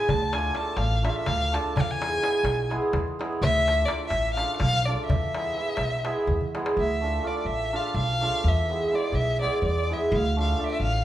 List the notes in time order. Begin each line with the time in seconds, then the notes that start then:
Already playing: G#3 G#5
0.09 D2 A5, darbuka dum
0.22 darbuka tek
0.33 A3 D4 F4 A4 G#5, darbuka tek
0.55 A3 D4 F4 A4 A5, darbuka tek
0.66 darbuka tek
0.77 A1 F5, darbuka tek
0.91 darbuka tek
1.03 A3 D4 F4 A4 E5, darbuka tek
1.09 F5
1.16 E5, darbuka tek
1.26 D2 F5, darbuka tek, darbuka dum
1.41 darbuka tek
1.52 A3 D4 F4 A4 A5, darbuka tek
1.66 darbuka tek
1.76 E2 G#5, darbuka dum
1.81 F5
1.89 G#5, darbuka tek
1.99 G#3 B3 E4 G#4, darbuka tek
2.21 G#3 B3 E4 G#4, darbuka tek
2.34 darbuka tek
2.43 B1, darbuka tek
2.58 darbuka tek
2.70 G#3 B3 E4 G#4, darbuka tek
2.82 darbuka tek
2.93 E2, darbuka tek, darbuka dum
3.08 darbuka tek
3.19 G#3 B3 E4 G#4, darbuka tek
3.32 darbuka tek
3.42 D2 E5, darbuka dum
3.56 darbuka tek
3.67 A3 D4 F4 A4, darbuka tek
3.85 A3 D4 D5, darbuka tek
3.90 F4 A4
4.00 darbuka tek
4.07 A1 E5, darbuka tek
4.24 darbuka tek
4.34 A3 D4 F5, darbuka tek
4.39 F4 A4
4.48 darbuka tek
4.56 B1 F5, darbuka tek, darbuka dum
4.85 A3 D4 F4 A4 D5
4.99 darbuka tek
5.05 E5
5.09 E2, darbuka dum
5.21 darbuka tek
5.34 G#3 B3 E4 G#4, darbuka tek
5.45 darbuka tek
5.56 G#3 B3 E4 G#4
5.66 darbuka tek
5.77 B1, darbuka tek
5.91 darbuka tek
6.04 G#3 B3 E4 G#4, darbuka tek
6.27 E2, darbuka dum
6.41 darbuka dum
6.54 G#3 B3 E4 G#4, darbuka tek
6.66 darbuka tek
6.77 D2 E5
7.01 A3 D4 F4 A4
7.23 A3 D4 F4 A4 D5
7.45 A1 E5
7.72 A3 D4 F4 A4 F5
7.94 B1 F5
8.21 A3 D4 F4 A4
8.44 E2 E5
8.69 G#3 B3 E4 G#4
8.92 G#3 B3 E4 G#4 D5
9.12 B1 E5
9.40 G#3 B3 E4 G#4 D5
9.62 E2 D5
9.90 G#3 B3 E4 G#4 E5
10.12 D2 F5
10.36 A3 D4 F4 A4 F5
10.58 A3 D4 F4 A4
10.64 D5 E5
10.71 E5
10.80 A1 F5